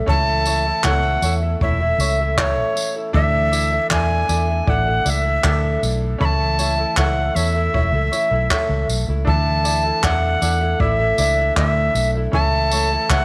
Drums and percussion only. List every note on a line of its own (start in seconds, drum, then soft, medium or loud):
0.08 kick loud
0.46 tambourine medium
0.84 kick loud
0.84 clap medium
1.22 tambourine medium
1.61 kick loud
2.00 tambourine medium
2.38 kick loud
2.38 clap medium
2.77 tambourine medium
3.14 kick loud
3.53 tambourine medium
3.91 kick loud
3.91 clap loud
4.29 tambourine medium
4.68 kick loud
5.06 tambourine medium
5.44 kick loud
5.44 clap medium
5.83 tambourine medium
6.21 kick loud
6.59 tambourine medium
6.97 kick loud
6.97 clap loud
7.36 tambourine medium
7.74 kick loud
8.13 tambourine medium
8.51 kick loud
8.51 clap medium
8.90 tambourine medium
9.27 kick loud
9.65 tambourine medium
10.03 kick medium
10.03 clap loud
10.42 tambourine medium
10.80 kick loud
11.18 tambourine medium
11.57 kick loud
11.57 clap medium
11.95 tambourine medium
12.33 kick loud
12.71 tambourine medium
13.10 kick loud
13.10 clap loud